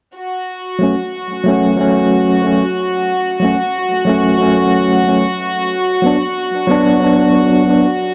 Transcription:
0, 0, Header, 1, 3, 480
1, 0, Start_track
1, 0, Key_signature, 3, "minor"
1, 0, Tempo, 652174
1, 125, Time_signature, 4, 2, 24, 8
1, 5994, End_track
2, 0, Start_track
2, 0, Title_t, "Violin section"
2, 0, Program_c, 0, 48
2, 115, Note_on_c, 0, 66, 70
2, 119, Note_off_c, 0, 66, 0
2, 119, Note_on_c, 0, 66, 68
2, 5994, Note_off_c, 0, 66, 0
2, 5994, End_track
3, 0, Start_track
3, 0, Title_t, "Tine electric piano"
3, 0, Program_c, 1, 4
3, 580, Note_on_c, 1, 54, 71
3, 598, Note_on_c, 1, 57, 61
3, 612, Note_on_c, 1, 61, 76
3, 678, Note_off_c, 1, 54, 0
3, 687, Note_off_c, 1, 57, 0
3, 694, Note_off_c, 1, 61, 0
3, 1059, Note_on_c, 1, 54, 78
3, 1076, Note_on_c, 1, 57, 73
3, 1091, Note_on_c, 1, 61, 86
3, 1287, Note_off_c, 1, 54, 0
3, 1296, Note_off_c, 1, 57, 0
3, 1297, Note_on_c, 1, 54, 70
3, 1304, Note_off_c, 1, 61, 0
3, 1314, Note_on_c, 1, 57, 66
3, 1331, Note_on_c, 1, 61, 80
3, 1767, Note_off_c, 1, 54, 0
3, 1775, Note_off_c, 1, 57, 0
3, 1779, Note_on_c, 1, 54, 58
3, 1784, Note_off_c, 1, 61, 0
3, 1793, Note_on_c, 1, 57, 58
3, 1813, Note_on_c, 1, 61, 71
3, 1929, Note_off_c, 1, 54, 0
3, 1936, Note_off_c, 1, 57, 0
3, 1946, Note_off_c, 1, 61, 0
3, 2502, Note_on_c, 1, 54, 73
3, 2518, Note_on_c, 1, 57, 65
3, 2536, Note_on_c, 1, 61, 80
3, 2599, Note_off_c, 1, 54, 0
3, 2607, Note_off_c, 1, 57, 0
3, 2616, Note_off_c, 1, 61, 0
3, 2981, Note_on_c, 1, 54, 77
3, 2995, Note_on_c, 1, 57, 80
3, 3011, Note_on_c, 1, 61, 87
3, 3208, Note_off_c, 1, 54, 0
3, 3216, Note_off_c, 1, 57, 0
3, 3224, Note_off_c, 1, 61, 0
3, 3224, Note_on_c, 1, 54, 72
3, 3243, Note_on_c, 1, 57, 66
3, 3257, Note_on_c, 1, 61, 82
3, 3690, Note_off_c, 1, 54, 0
3, 3700, Note_off_c, 1, 57, 0
3, 3707, Note_off_c, 1, 61, 0
3, 3707, Note_on_c, 1, 54, 60
3, 3728, Note_on_c, 1, 57, 55
3, 3744, Note_on_c, 1, 61, 67
3, 3853, Note_off_c, 1, 54, 0
3, 3863, Note_off_c, 1, 57, 0
3, 3871, Note_off_c, 1, 61, 0
3, 4429, Note_on_c, 1, 54, 73
3, 4445, Note_on_c, 1, 59, 67
3, 4461, Note_on_c, 1, 62, 78
3, 4523, Note_off_c, 1, 54, 0
3, 4531, Note_off_c, 1, 59, 0
3, 4539, Note_off_c, 1, 62, 0
3, 4909, Note_on_c, 1, 54, 89
3, 4923, Note_on_c, 1, 59, 75
3, 4939, Note_on_c, 1, 62, 92
3, 5133, Note_off_c, 1, 54, 0
3, 5140, Note_off_c, 1, 59, 0
3, 5148, Note_off_c, 1, 62, 0
3, 5149, Note_on_c, 1, 54, 75
3, 5167, Note_on_c, 1, 59, 64
3, 5183, Note_on_c, 1, 62, 77
3, 5613, Note_off_c, 1, 54, 0
3, 5622, Note_off_c, 1, 59, 0
3, 5630, Note_off_c, 1, 62, 0
3, 5630, Note_on_c, 1, 54, 64
3, 5648, Note_on_c, 1, 59, 56
3, 5664, Note_on_c, 1, 62, 69
3, 5775, Note_off_c, 1, 54, 0
3, 5784, Note_off_c, 1, 59, 0
3, 5791, Note_off_c, 1, 62, 0
3, 5994, End_track
0, 0, End_of_file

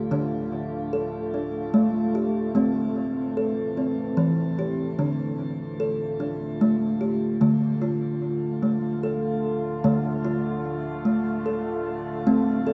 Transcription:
0, 0, Header, 1, 3, 480
1, 0, Start_track
1, 0, Key_signature, -1, "minor"
1, 0, Tempo, 810811
1, 69, Time_signature, 3, 2, 24, 8
1, 7536, End_track
2, 0, Start_track
2, 0, Title_t, "Kalimba"
2, 0, Program_c, 0, 108
2, 0, Note_on_c, 0, 67, 66
2, 66, Note_on_c, 0, 50, 80
2, 70, Note_off_c, 0, 67, 0
2, 70, Note_on_c, 0, 62, 78
2, 550, Note_off_c, 0, 62, 0
2, 551, Note_on_c, 0, 69, 72
2, 791, Note_off_c, 0, 69, 0
2, 793, Note_on_c, 0, 62, 66
2, 810, Note_off_c, 0, 50, 0
2, 1029, Note_on_c, 0, 57, 92
2, 1273, Note_off_c, 0, 62, 0
2, 1273, Note_on_c, 0, 67, 71
2, 1401, Note_off_c, 0, 57, 0
2, 1509, Note_on_c, 0, 57, 80
2, 1513, Note_off_c, 0, 67, 0
2, 1514, Note_on_c, 0, 60, 77
2, 1994, Note_off_c, 0, 60, 0
2, 1996, Note_on_c, 0, 69, 73
2, 2233, Note_on_c, 0, 60, 68
2, 2234, Note_off_c, 0, 69, 0
2, 2252, Note_off_c, 0, 57, 0
2, 2470, Note_on_c, 0, 52, 90
2, 2713, Note_off_c, 0, 60, 0
2, 2716, Note_on_c, 0, 67, 68
2, 2841, Note_off_c, 0, 52, 0
2, 2952, Note_on_c, 0, 62, 75
2, 2954, Note_off_c, 0, 67, 0
2, 2954, Note_on_c, 0, 50, 80
2, 3433, Note_off_c, 0, 62, 0
2, 3433, Note_on_c, 0, 69, 69
2, 3671, Note_on_c, 0, 62, 68
2, 3673, Note_off_c, 0, 69, 0
2, 3694, Note_off_c, 0, 50, 0
2, 3915, Note_on_c, 0, 57, 86
2, 4149, Note_on_c, 0, 67, 67
2, 4152, Note_off_c, 0, 62, 0
2, 4284, Note_off_c, 0, 57, 0
2, 4386, Note_on_c, 0, 57, 87
2, 4389, Note_on_c, 0, 50, 85
2, 4390, Note_off_c, 0, 67, 0
2, 4627, Note_on_c, 0, 65, 73
2, 4629, Note_off_c, 0, 57, 0
2, 5107, Note_on_c, 0, 57, 72
2, 5108, Note_off_c, 0, 65, 0
2, 5130, Note_off_c, 0, 50, 0
2, 5348, Note_on_c, 0, 69, 72
2, 5349, Note_off_c, 0, 57, 0
2, 5826, Note_on_c, 0, 57, 85
2, 5827, Note_on_c, 0, 50, 91
2, 5828, Note_off_c, 0, 69, 0
2, 6066, Note_on_c, 0, 65, 73
2, 6067, Note_off_c, 0, 57, 0
2, 6543, Note_on_c, 0, 57, 75
2, 6546, Note_off_c, 0, 65, 0
2, 6567, Note_off_c, 0, 50, 0
2, 6783, Note_on_c, 0, 69, 68
2, 6785, Note_off_c, 0, 57, 0
2, 7262, Note_on_c, 0, 60, 90
2, 7263, Note_off_c, 0, 69, 0
2, 7264, Note_on_c, 0, 57, 85
2, 7499, Note_on_c, 0, 69, 73
2, 7503, Note_off_c, 0, 60, 0
2, 7536, Note_off_c, 0, 57, 0
2, 7536, Note_off_c, 0, 69, 0
2, 7536, End_track
3, 0, Start_track
3, 0, Title_t, "Ambient pad"
3, 0, Program_c, 1, 92
3, 0, Note_on_c, 1, 50, 74
3, 0, Note_on_c, 1, 57, 68
3, 0, Note_on_c, 1, 65, 81
3, 1489, Note_off_c, 1, 65, 0
3, 1491, Note_off_c, 1, 50, 0
3, 1507, Note_on_c, 1, 52, 73
3, 1510, Note_on_c, 1, 60, 78
3, 2932, Note_off_c, 1, 57, 0
3, 2936, Note_off_c, 1, 52, 0
3, 2938, Note_off_c, 1, 60, 0
3, 2950, Note_on_c, 1, 57, 60
3, 2950, Note_on_c, 1, 65, 79
3, 2952, Note_on_c, 1, 50, 69
3, 4376, Note_off_c, 1, 57, 0
3, 4376, Note_off_c, 1, 65, 0
3, 4378, Note_off_c, 1, 50, 0
3, 4392, Note_on_c, 1, 50, 73
3, 4393, Note_on_c, 1, 65, 77
3, 4396, Note_on_c, 1, 57, 69
3, 7241, Note_off_c, 1, 50, 0
3, 7242, Note_off_c, 1, 65, 0
3, 7263, Note_on_c, 1, 60, 68
3, 7264, Note_on_c, 1, 64, 81
3, 7536, Note_off_c, 1, 57, 0
3, 7536, Note_off_c, 1, 60, 0
3, 7536, Note_off_c, 1, 64, 0
3, 7536, End_track
0, 0, End_of_file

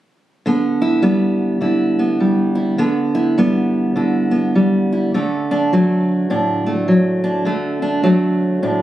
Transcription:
0, 0, Header, 1, 2, 480
1, 0, Start_track
1, 0, Tempo, 584226
1, 375, Time_signature, 4, 2, 24, 8
1, 7247, End_track
2, 0, Start_track
2, 0, Title_t, "Steel-string acoustic guitar"
2, 0, Program_c, 0, 25
2, 376, Note_on_c, 0, 50, 44
2, 383, Note_on_c, 0, 59, 35
2, 670, Note_on_c, 0, 64, 38
2, 840, Note_off_c, 0, 59, 0
2, 840, Note_on_c, 0, 55, 40
2, 843, Note_on_c, 0, 59, 36
2, 1316, Note_off_c, 0, 50, 0
2, 1319, Note_on_c, 0, 50, 40
2, 1323, Note_off_c, 0, 64, 0
2, 1326, Note_on_c, 0, 64, 35
2, 1624, Note_off_c, 0, 59, 0
2, 1636, Note_on_c, 0, 59, 32
2, 1800, Note_off_c, 0, 55, 0
2, 1809, Note_on_c, 0, 55, 42
2, 2088, Note_off_c, 0, 64, 0
2, 2097, Note_on_c, 0, 64, 36
2, 2269, Note_off_c, 0, 64, 0
2, 2272, Note_off_c, 0, 55, 0
2, 2278, Note_off_c, 0, 59, 0
2, 2283, Note_off_c, 0, 50, 0
2, 2286, Note_on_c, 0, 50, 47
2, 2290, Note_on_c, 0, 59, 41
2, 2586, Note_on_c, 0, 64, 41
2, 2770, Note_off_c, 0, 59, 0
2, 2774, Note_on_c, 0, 55, 43
2, 2780, Note_on_c, 0, 59, 37
2, 3247, Note_off_c, 0, 50, 0
2, 3250, Note_off_c, 0, 64, 0
2, 3250, Note_on_c, 0, 50, 41
2, 3259, Note_on_c, 0, 64, 35
2, 3533, Note_off_c, 0, 59, 0
2, 3543, Note_on_c, 0, 59, 35
2, 3732, Note_off_c, 0, 55, 0
2, 3742, Note_on_c, 0, 55, 42
2, 4033, Note_off_c, 0, 64, 0
2, 4046, Note_on_c, 0, 64, 38
2, 4191, Note_off_c, 0, 59, 0
2, 4198, Note_off_c, 0, 55, 0
2, 4203, Note_off_c, 0, 64, 0
2, 4222, Note_off_c, 0, 50, 0
2, 4225, Note_on_c, 0, 50, 49
2, 4230, Note_on_c, 0, 57, 41
2, 4528, Note_on_c, 0, 62, 40
2, 4705, Note_on_c, 0, 54, 43
2, 4709, Note_off_c, 0, 57, 0
2, 4712, Note_on_c, 0, 57, 37
2, 5175, Note_on_c, 0, 45, 42
2, 5177, Note_off_c, 0, 62, 0
2, 5180, Note_on_c, 0, 62, 43
2, 5466, Note_off_c, 0, 57, 0
2, 5475, Note_on_c, 0, 57, 38
2, 5642, Note_off_c, 0, 54, 0
2, 5652, Note_on_c, 0, 54, 47
2, 5943, Note_off_c, 0, 62, 0
2, 5946, Note_on_c, 0, 62, 43
2, 6112, Note_off_c, 0, 54, 0
2, 6113, Note_off_c, 0, 45, 0
2, 6120, Note_off_c, 0, 50, 0
2, 6121, Note_off_c, 0, 57, 0
2, 6123, Note_on_c, 0, 50, 48
2, 6131, Note_on_c, 0, 57, 43
2, 6423, Note_off_c, 0, 62, 0
2, 6426, Note_on_c, 0, 62, 43
2, 6593, Note_off_c, 0, 57, 0
2, 6599, Note_on_c, 0, 54, 49
2, 6603, Note_on_c, 0, 57, 41
2, 7080, Note_off_c, 0, 62, 0
2, 7086, Note_on_c, 0, 45, 43
2, 7090, Note_on_c, 0, 62, 45
2, 7247, Note_off_c, 0, 45, 0
2, 7247, Note_off_c, 0, 50, 0
2, 7247, Note_off_c, 0, 54, 0
2, 7247, Note_off_c, 0, 57, 0
2, 7247, Note_off_c, 0, 62, 0
2, 7247, End_track
0, 0, End_of_file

